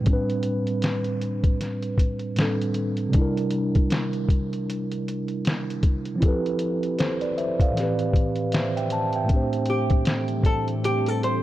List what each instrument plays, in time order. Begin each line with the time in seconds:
0.01 tine electric piano A2 G3
0.06 tine electric piano C4, kick, closed hi-hat
0.10 tine electric piano D4 B4
0.30 closed hi-hat
0.43 closed hi-hat
0.67 closed hi-hat
0.82 snare, closed hi-hat
1.04 closed hi-hat
1.21 closed hi-hat
1.44 kick, closed hi-hat
1.61 snare, closed hi-hat
1.83 closed hi-hat
1.98 kick, closed hi-hat
2.19 closed hi-hat
2.35 tine electric piano A2 G3 C4, snare, closed hi-hat
2.40 tine electric piano D4 A4
2.62 closed hi-hat
2.74 closed hi-hat
2.97 closed hi-hat
3.09 tine electric piano C3 G3
3.13 tine electric piano D4, kick, closed hi-hat
3.18 tine electric piano E4 A#4
3.37 closed hi-hat
3.51 closed hi-hat
3.75 kick, closed hi-hat
3.90 snare, closed hi-hat
4.13 closed hi-hat
4.29 kick, closed hi-hat
4.53 closed hi-hat
4.70 closed hi-hat
4.92 closed hi-hat
5.08 closed hi-hat
5.28 closed hi-hat
5.45 snare, closed hi-hat
5.70 closed hi-hat
5.83 kick, closed hi-hat
6.05 closed hi-hat
6.16 tine electric piano F3 C4
6.21 tine electric piano E4 G4, kick, closed hi-hat
6.26 tine electric piano A4 B4
6.46 closed hi-hat
6.59 closed hi-hat
6.83 closed hi-hat
6.99 tine electric piano A4 C5, snare, closed hi-hat
7.21 tine electric piano B4 D5, closed hi-hat
7.38 tine electric piano C5 E5, closed hi-hat
7.60 tine electric piano D5 F5, kick, closed hi-hat
7.71 tine electric piano A2 E3
7.77 tine electric piano C4 G4, snare, closed hi-hat
7.83 tine electric piano B4
7.99 closed hi-hat
8.13 kick, closed hi-hat
8.36 closed hi-hat
8.52 tine electric piano C5 E5, snare, closed hi-hat
8.77 tine electric piano E5 G5, closed hi-hat
8.90 tine electric piano A5, closed hi-hat
9.13 tine electric piano E5 G5, closed hi-hat
9.23 tine electric piano A2 A3
9.29 ambient pad A2 E3 G3 C4 D4 A4, tine electric piano C4 D4, kick, closed hi-hat
9.33 tine electric piano G4 C5
9.53 closed hi-hat
9.66 closed hi-hat
9.70 hollow-body jazz guitar G4
9.90 kick, closed hi-hat
10.05 snare, closed hi-hat
10.28 closed hi-hat
10.43 hollow-body jazz guitar A4, kick, closed hi-hat
10.68 closed hi-hat
10.84 hollow-body jazz guitar G4, closed hi-hat
11.06 hollow-body jazz guitar A4, closed hi-hat
11.23 hollow-body jazz guitar C5, closed hi-hat